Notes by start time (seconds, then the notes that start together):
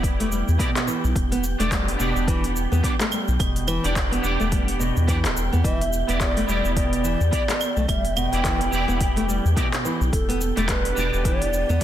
Already playing: E1 B3 E4 G4 D5 G5
0.03 kick, open hi-hat, shaker
0.20 A3, open hi-hat, shaker
0.32 G3, shaker
0.48 E2, shaker
0.58 B2 B3 E4 G4 D5, kick, open hi-hat, shaker
0.76 clap, open hi-hat, shaker
0.87 E3, shaker
1.04 B1, shaker
1.16 E1, kick, open hi-hat, shaker
1.32 B3, open hi-hat, shaker
1.44 shaker
1.59 E1 A3 B3 D4 G4 D5, open hi-hat, shaker
1.71 G3, kick, clap, open hi-hat, shaker
1.88 open hi-hat, shaker
1.97 E1 B2 B3 D4 G4 D5, shaker
2.16 E1, shaker
2.28 E3, kick, open hi-hat, shaker
2.44 open hi-hat, shaker
2.56 shaker
2.72 E2 B3, shaker
2.83 B3 D4 G4 D5, kick, open hi-hat, shaker
3.00 A3, clap, open hi-hat, shaker
3.11 G3, claves, shaker
3.28 B1, shaker
3.39 E1 B2, kick, open hi-hat, claves, shaker
3.56 open hi-hat, shaker
3.67 E3, claves, shaker
3.84 E1 B3 D4 G4 D5, open hi-hat, shaker
3.96 kick, clap, open hi-hat, shaker
4.12 B3, open hi-hat, shaker
4.22 E1 B3 D4 G4, shaker
4.26 D5
4.40 E1 A3, shaker
4.51 G3, kick, open hi-hat, shaker
4.68 open hi-hat, shaker
4.79 B2, shaker
4.97 E2, shaker
5.07 E3 B3 D4 G4 D5, kick, open hi-hat, shaker
5.25 D1, clap, open hi-hat, shaker
5.37 E1, shaker
5.53 E2 B3, shaker
5.63 E1 E3 E5, kick, open hi-hat, shaker
5.81 open hi-hat, shaker
5.93 shaker
6.07 E1 B3 E4 G4 D5, open hi-hat, shaker
6.20 D5, kick, clap, open hi-hat, shaker
6.37 A3, open hi-hat, shaker
6.46 E1 G3 B3 E4 G4, shaker
6.51 D5
6.65 E1, shaker
6.76 B2 D5, kick, open hi-hat, shaker
6.93 open hi-hat, shaker
7.04 E3, shaker
7.21 E2, shaker
7.31 B3 E4 G4 D5, kick, open hi-hat, shaker
7.49 B3, clap, open hi-hat, shaker
7.61 claves, shaker
7.77 B1 A3, shaker
7.88 E1 G3 E5, kick, open hi-hat, claves, shaker
8.05 open hi-hat, shaker
8.16 B2 F#5, claves, shaker
8.30 E1 B3 E4 G4 G5, open hi-hat, shaker
8.34 D5
8.44 E3, kick, clap, open hi-hat, shaker
8.61 open hi-hat, shaker
8.71 E1 B3 E4 G4 D5, shaker
8.88 E1 B3, shaker
9.01 kick, open hi-hat, shaker
9.16 A3, open hi-hat, shaker
9.28 G3, shaker
9.45 E2, shaker
9.56 B2 B3 E4 G4 D5, kick, open hi-hat, shaker
9.73 clap, open hi-hat, shaker
9.85 E3, shaker
10.01 B1, shaker
10.12 E1 A4, kick, open hi-hat, shaker
10.29 B3, open hi-hat, shaker
10.41 shaker
10.56 E1 A3 B3 D4 G4 D5, open hi-hat, shaker
10.68 G3 B4, kick, clap, open hi-hat, shaker
10.85 open hi-hat, shaker
10.95 E1 B2 B3 D4 G4, shaker
10.99 D5
11.14 E1, shaker
11.25 E3 D5, kick, open hi-hat, shaker
11.42 open hi-hat, shaker
11.53 shaker
11.69 E2 B3, shaker
11.80 B3 D4